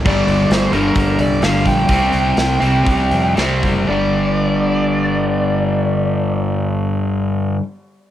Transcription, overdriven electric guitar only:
X:1
M:4/4
L:1/8
Q:1/4=113
K:Cmix
V:1 name="Overdriven electric guitar" clef=bass
[G,,D,G,]3 [G,,D,G,]3 [G,,D,G,]2 | [C,G,C]3 [C,G,C]3 [C,G,C]2 | [G,,D,G,]8- | [G,,D,G,]8 |]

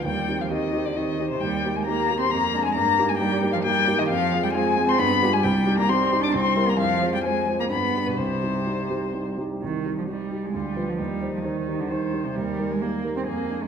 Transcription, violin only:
X:1
M:3/4
L:1/16
Q:1/4=132
K:Cm
V:1 name="Violin"
g3 f e3 d e3 c | g3 a b3 c' b3 a | b3 a g3 f g3 e | f3 g a3 c' =b3 a |
g3 b c'3 d' c'3 b | f3 g a3 b =b3 =B | c8- c2 z2 | z4 E4 F4 |
E8 c4 | B8 A4 |]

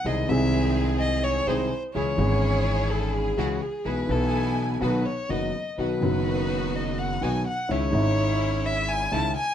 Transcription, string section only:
X:1
M:4/4
L:1/8
Q:1/4=126
K:C#m
V:1 name="String section"
[^B,DG] [D,B,G]4- [D,B,G] [B,DG] z | [CEG] [CEG]4- [CEG] [CEG] z | [B,EG] [B,Eg]3 [B,DF] z [B,DF] z | [B,DF] [B,DF]4- [B,DF] [B,DF] z |
[CDE] [CE]4- [CE] [CDE] z |]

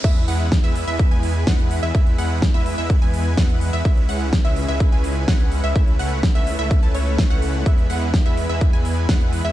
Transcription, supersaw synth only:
X:1
M:4/4
L:1/16
Q:1/4=126
K:E
V:1 name="Supersaw synth"
[G,B,EBe]2 [G,B,EBf]2 z [G,B,EBe]2 [G,B,EBe]2 [G,B,EBg]3 [G,B,EBf]3 [G,B,EBe] | [G,B,EBe]2 [G,B,EBf]2 z [G,B,EBe]2 [G,B,EBe]2 [G,B,EBg]3 [G,B,EBf]3 [G,B,EBe] | [G,CEBe]2 [G,CEBf]2 z [G,CEBe]2 [G,CEBe]2 [G,CEBg]3 [G,CEBf]3 [G,CEBe] | [A,CEBe]2 [A,CEBf]2 z [A,CEBe]2 [A,CEBe]2 [A,CEBa] [A,CEBc]3 [A,CEBf]3 |
[G,B,EBe]2 [G,B,EBf]2 z [G,B,EBe]2 [G,B,EBe]2 [G,B,EBg]3 [G,B,EBf]3 [G,B,EBe] |]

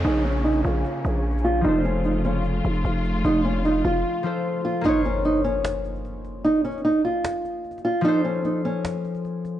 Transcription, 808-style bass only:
X:1
M:4/4
L:1/8
Q:1/4=150
K:Bbm
V:1 name="808-style bass" clef=bass
B,,,3 B,,, z B,,,3 | F,,,4- F,,, F,,, F,,,2 | F,,,3 F,,, z4 | z8 |
z8 | z8 |]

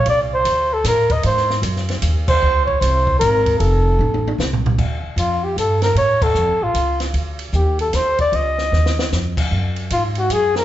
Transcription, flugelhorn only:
X:1
M:3/4
L:1/8
Q:"Swing" 1/4=152
K:Cdor
V:1 name="Flugelhorn"
d c2 A B e | c2 z3 c- | c _d c2 B2 | A4 z2 |
z2 F G A B | ^c A2 ^E2 z | z2 G A c d | e4 z2 |
z2 F _G _A B |]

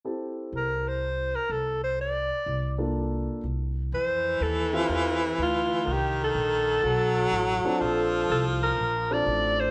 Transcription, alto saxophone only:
X:1
M:4/4
L:1/8
Q:"Swing" 1/4=124
K:Cmix
V:1 name="Alto saxophone"
z2 B c2 B A c | d3 z4 z | c2 A F2 z F2 | G A6 z |
A2 A B2 d2 c |]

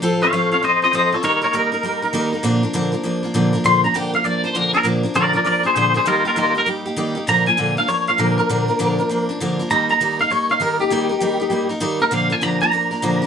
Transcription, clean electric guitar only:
X:1
M:4/4
L:1/8
Q:"Swing" 1/4=198
K:Bb
V:1 name="Clean electric guitar"
z [_df] [df] [df] [ce] [ce] [ce] [Ad] | [B_d] [Bd] B6 | z8 | c' b g f d c B B |
z2 [Bd] [Bd] [Bd] [_Ac] [Ac] [Ac] | [FB] [FB] [FB] B z4 | b _a2 f _d f B B- | B4- B z3 |
b b2 f _d f B G- | G4- G z2 B | f _a b b4- b |]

